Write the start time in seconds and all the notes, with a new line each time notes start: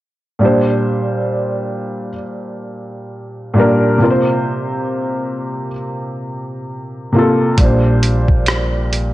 0.39 A#2 G3 D4
0.45 C5
3.54 A#2 G3 D4
3.59 A#4
3.98 C3 A#3
4.02 F4 A#4
4.10 C5
7.13 C3 A#3 F4
7.18 A4
7.58 A#1 A#2 G3, kick, closed hi-hat
7.62 D4 C5
8.03 closed hi-hat
8.28 kick
8.46 cross-stick, closed hi-hat
8.93 closed hi-hat